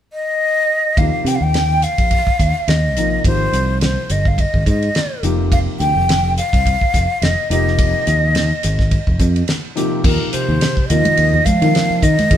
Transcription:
0.13 1.00 D#5 medium
0.97 1.09 D#2 medium
0.97 1.86 C3 soft
0.97 1.86 F3 soft
0.97 1.86 A#3 soft
0.97 1.86 D#4 soft
0.97 1.86 G4 medium
0.97 1.29 F5 medium
0.97 kick medium
0.97 ride medium
1.24 1.37 C3 medium
1.24 1.37 G5 medium
1.24 snare soft
1.24 hi-hat pedal medium
1.24 ride soft
1.35 1.44 F5 medium
1.41 1.84 D#2 medium
1.41 1.85 G5 medium
1.54 snare medium
1.54 ride medium
1.82 2.70 F5 medium
1.82 hi-hat pedal medium
1.82 ride soft
1.98 2.20 A#1 medium
1.98 kick medium
1.98 ride medium
2.11 kick medium
2.11 ride medium
2.27 kick medium
2.39 2.51 D#2 medium
2.39 kick medium
2.39 hi-hat pedal medium
2.39 ride soft
2.68 2.96 D#2 medium
2.68 3.25 D#5 medium
2.68 snare medium
2.68 ride medium
2.96 3.18 A#1 medium
2.96 3.19 C3 medium
2.96 3.19 F3 medium
2.96 3.20 A#3 medium
2.96 3.20 D#4 medium
2.96 3.20 A#4 medium
2.96 hi-hat pedal medium
2.96 ride soft
3.24 3.46 G#1 medium
3.24 4.13 C3 medium
3.24 4.14 F3 medium
3.24 4.13 A#3 soft
3.24 4.14 D#4 soft
3.24 4.14 G4 medium
3.24 3.78 C5 medium
3.24 kick medium
3.24 ride medium
3.53 3.96 C2 medium
3.53 hi-hat pedal medium
3.53 ride soft
3.81 4.13 C5 medium
3.81 snare medium
3.81 ride medium
4.09 4.43 G1 medium
4.09 4.29 D#5 medium
4.09 hi-hat pedal medium
4.09 ride soft
4.25 4.42 F5 medium
4.25 kick medium
4.38 4.68 D#5 medium
4.38 kick medium
4.38 ride medium
4.54 4.63 G#1 medium
4.54 kick medium
4.66 4.88 G#2 medium
4.66 5.22 D#5 medium
4.66 kick medium
4.66 hi-hat pedal medium
4.66 ride soft
4.82 ride soft
4.95 snare medium
4.95 ride medium
5.23 5.66 F1 medium
5.23 6.15 C3 medium
5.23 6.15 F3 medium
5.23 6.15 A#3 medium
5.23 6.15 D#4 medium
5.23 6.15 G4 medium
5.23 hi-hat pedal medium
5.23 ride soft
5.52 5.59 F5 medium
5.52 kick medium
5.52 ride medium
5.80 5.92 D2 medium
5.80 6.33 G5 medium
5.80 hi-hat pedal medium
5.80 ride soft
5.96 6.39 F1 medium
6.09 snare loud
6.09 ride medium
6.37 7.25 F5 medium
6.37 hi-hat pedal medium
6.37 ride medium
6.53 6.74 C2 medium
6.53 kick medium
6.53 ride medium
6.66 kick medium
6.66 ride medium
6.81 kick medium
6.94 7.06 F1 medium
6.94 kick medium
6.94 snare soft
6.94 hi-hat pedal medium
6.94 ride medium
7.22 7.34 F1 medium
7.22 7.51 D#5 medium
7.22 snare medium
7.22 ride medium
7.50 7.93 F1 medium
7.50 8.42 C3 medium
7.50 8.41 F3 medium
7.50 8.42 A#3 medium
7.50 8.42 D#4 medium
7.50 8.42 G4 medium
7.50 9.45 D#5 medium
7.50 hi-hat pedal medium
7.50 ride medium
7.68 snare soft
7.79 kick loud
7.79 ride medium
8.07 8.50 D#2 medium
8.07 hi-hat pedal medium
8.07 ride medium
8.35 snare loud
8.35 ride medium
8.63 8.97 G#1 medium
8.63 snare soft
8.63 hi-hat pedal medium
8.63 ride medium
8.79 kick medium
8.79 snare soft
8.91 kick medium
8.91 ride medium
9.07 9.17 F1 medium
9.07 kick medium
9.19 9.41 F2 medium
9.19 kick medium
9.19 hi-hat pedal medium
9.19 ride soft
9.36 ride soft
9.48 snare medium
9.48 ride medium
9.75 9.99 C3 medium
9.75 9.99 F3 medium
9.75 9.99 A#3 medium
9.75 9.99 D#4 medium
9.75 9.99 G4 medium
9.75 hi-hat pedal medium
9.75 ride soft
10.04 10.17 D#2 medium
10.04 10.31 A#2 medium
10.04 10.71 C3 medium
10.04 10.71 F3 soft
10.04 10.71 A#3 medium
10.04 10.72 D#4 medium
10.04 10.31 A#4 medium
10.04 kick loud
10.04 crash medium
10.32 10.86 C3 medium
10.32 10.86 C5 medium
10.32 muted fretless electric bass stroke soft
10.32 hi-hat pedal medium
10.32 ride medium
10.49 10.58 D#2 medium
10.61 snare loud
10.61 ride medium
10.77 muted fretless electric bass stroke soft
10.77 kick medium
10.88 11.02 D#2 medium
10.88 11.45 C3 medium
10.88 11.47 D#3 medium
10.88 11.45 F3 medium
10.88 11.45 A#3 medium
10.88 11.45 D#4 medium
10.88 11.45 F4 medium
10.88 11.47 D#5 medium
10.88 hi-hat pedal medium
10.88 ride medium
10.88 low conga medium
11.05 ride medium
11.05 high conga medium
11.17 11.39 D#2 medium
11.17 ride medium
11.34 low conga medium
11.45 12.04 F3 medium
11.45 12.05 F5 loud
11.45 kick medium
11.45 hi-hat pedal medium
11.45 ride medium
11.45 high conga medium
11.62 12.17 C3 medium
11.62 11.71 D#3 medium
11.62 12.17 F3 medium
11.62 12.17 A#3 medium
11.62 12.17 D#4 medium
11.62 12.17 A#4 medium
11.62 ride medium
11.75 snare medium
11.75 ride medium
11.90 muted fretless electric bass stroke soft
12.03 12.15 D#3 medium
12.03 12.37 D#3 medium
12.03 12.37 D#5 medium
12.03 kick medium
12.03 hi-hat pedal medium
12.03 ride medium
12.18 muted fretless electric bass stroke soft
12.18 snare soft
12.18 ride medium
12.18 high conga medium
12.31 12.37 G#1 loud
12.31 12.37 C3 medium
12.31 12.37 F3 medium
12.31 12.37 A#3 medium
12.31 12.37 D#4 medium
12.31 12.37 G#4 medium
12.31 kick loud
12.31 ride medium

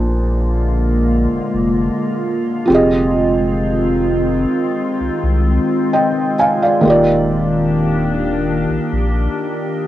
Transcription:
0.00 1.27 A#1 loud
0.00 2.63 A#2 medium
0.00 2.67 D3 medium
0.00 6.81 G#3 medium
0.00 2.64 A#3 medium
0.00 2.66 A#3 medium
0.00 2.66 D4 medium
0.00 6.81 F4 medium
0.00 2.67 G#4 medium
0.00 2.68 C5 medium
1.31 1.40 F1 soft
1.54 1.89 F1 medium
2.65 6.33 F3 medium
2.65 6.34 C4 medium
2.70 4.45 F1 loud
2.70 9.87 D#3 medium
2.70 6.81 C4 medium
2.70 6.35 G4 medium
2.70 6.36 G#4 medium
2.74 5.91 D#5 medium
5.00 5.10 C2 soft
5.23 5.58 C2 loud
5.93 6.37 D#5 medium
5.93 6.37 G5 medium
6.39 6.61 F5 medium
6.39 6.61 G#5 medium
6.63 6.89 D5 medium
6.63 7.06 F5 medium
6.81 9.87 D#3 medium
6.81 9.87 A#3 medium
6.81 9.87 D4 medium
6.81 9.87 G4 medium
6.85 8.66 D#1 loud
6.85 9.87 F4 medium
6.85 9.87 G4 medium
6.90 9.87 D5 medium
8.70 8.79 A#1 soft
8.93 9.28 A#1 medium

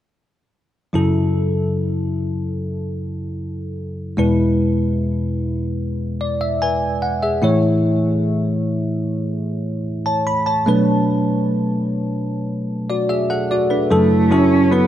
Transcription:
0.93 4.14 F#2 soft
0.93 4.14 C#3 soft
0.93 4.14 F#3 soft
0.93 4.14 E4 soft
0.93 4.15 A4 medium
4.17 7.38 E2 soft
4.17 7.38 B2 soft
4.17 7.38 G#3 soft
4.17 7.39 E4 soft
4.17 6.58 B4 soft
6.21 6.40 D5 soft
6.41 6.60 E5 soft
6.62 7.01 B4 soft
6.62 7.39 G#5 soft
7.02 7.21 F#5 soft
7.23 7.61 G#4 soft
7.23 7.61 E5 soft
7.42 10.63 A2 soft
7.42 10.63 E3 soft
7.42 10.62 A3 soft
7.42 10.63 E4 soft
7.42 9.82 C#5 medium
10.06 10.26 C#5 soft
10.06 10.25 A5 soft
10.27 10.46 B5 soft
10.46 10.85 C#5 soft
10.46 10.85 A5 soft
10.66 13.87 B2 soft
10.66 13.87 F#3 soft
10.66 13.87 A3 soft
10.66 12.66 D4 soft
10.66 12.66 B4 medium
12.90 13.09 F#4 soft
12.90 13.09 D5 soft
13.09 13.29 G#4 soft
13.09 13.29 E5 soft
13.30 13.50 A4 soft
13.30 13.49 F#5 soft
13.51 13.70 F#4 soft
13.51 13.70 D5 soft
13.70 14.09 D4 soft
13.70 14.09 B4 soft
13.91 14.87 F#2 soft
13.91 14.87 C#3 soft
13.91 14.29 F#3 medium
13.91 14.32 A3 medium
13.91 14.30 E4 medium
13.91 14.30 A4 medium
14.31 14.70 F#3 medium
14.31 14.72 C#4 medium
14.31 14.70 E4 soft
14.31 14.70 A4 medium
14.71 14.87 F#3 medium
14.71 14.87 B3 medium
14.71 14.87 E4 soft
14.71 14.87 B4 medium

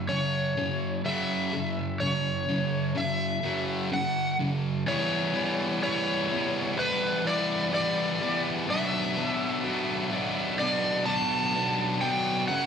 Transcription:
0.00 0.13 E5 loud
0.09 0.53 F#2 medium
0.09 0.53 C#3 medium
0.09 1.08 C#5 medium
0.57 1.01 F#2 medium
0.57 1.01 C#3 medium
1.05 1.50 F#2 medium
1.05 1.51 C#3 loud
1.05 1.51 F#3 loud
1.05 2.04 E5 medium
1.53 1.96 F#2 medium
1.53 1.96 C#3 medium
2.00 2.44 F#2 medium
2.00 2.44 C#3 medium
2.00 2.99 C#5 medium
2.49 2.92 F#2 medium
2.49 2.92 C#3 medium
2.95 3.39 F#2 medium
2.95 3.39 C#3 medium
2.95 3.93 E5 medium
3.43 3.89 F#2 medium
3.43 3.89 C#3 medium
3.43 3.90 F#3 loud
3.92 4.35 F#2 medium
3.92 4.35 C#3 loud
3.92 4.37 F#5 medium
4.39 4.83 F#2 medium
4.39 4.83 C#3 medium
4.86 5.33 E3 loud
4.86 5.33 G3 medium
4.86 5.34 B3 medium
4.86 5.34 E4 loud
4.86 5.82 C#5 medium
5.34 5.80 E3 medium
5.34 5.81 G3 medium
5.34 5.82 B3 loud
5.34 5.82 E4 loud
5.82 6.28 E3 medium
5.82 6.28 G3 medium
5.82 6.30 B3 medium
5.82 6.30 E4 medium
5.82 6.75 C#5 medium
6.29 6.75 E3 medium
6.29 6.76 G3 medium
6.29 6.76 B3 medium
6.29 6.77 E4 medium
6.76 7.23 E3 medium
6.76 7.24 G3 loud
6.76 7.24 B3 loud
6.76 7.25 E4 loud
6.76 7.28 B4 loud
7.24 7.71 E3 medium
7.24 7.71 G3 medium
7.24 7.72 B3 loud
7.24 7.73 E4 medium
7.24 7.73 D5 medium
7.72 8.20 E3 medium
7.72 8.20 G3 medium
7.72 8.21 B3 medium
7.72 8.21 E4 loud
7.72 8.42 D5 loud
8.21 8.66 E3 medium
8.21 8.66 G3 loud
8.21 8.67 B3 loud
8.21 8.67 E4 loud
8.67 9.15 B2 medium
8.67 9.16 F#3 loud
8.67 9.16 B3 loud
8.67 9.17 D4 loud
8.67 10.66 E5 loud
9.16 9.63 B2 medium
9.16 9.64 F#3 loud
9.16 9.64 B3 medium
9.16 9.64 D4 loud
9.64 10.10 B2 medium
9.64 10.12 F#3 medium
9.64 10.11 B3 loud
9.64 10.12 D4 medium
10.11 10.58 B2 medium
10.11 10.59 F#3 medium
10.11 10.59 B3 medium
10.11 10.59 D4 loud
10.59 11.05 B2 loud
10.59 11.06 F#3 loud
10.59 11.06 B3 loud
10.59 11.07 D4 loud
10.59 11.09 D5 loud
11.06 11.53 B2 loud
11.06 11.54 F#3 medium
11.06 11.54 B3 loud
11.06 11.54 D4 loud
11.06 12.01 A5 loud
11.54 11.99 B2 medium
11.54 12.01 F#3 loud
11.54 12.00 B3 loud
11.54 12.01 D4 loud
12.00 12.46 B2 medium
12.00 12.50 F#3 loud
12.00 12.47 B3 loud
12.00 12.47 D4 loud
12.00 12.48 G5 medium
12.48 12.66 F#2 loud
12.48 12.66 C#3 loud
12.48 12.66 F#3 loud
12.48 12.66 A#3 loud
12.48 12.66 C#4 loud
12.48 12.66 F#5 loud

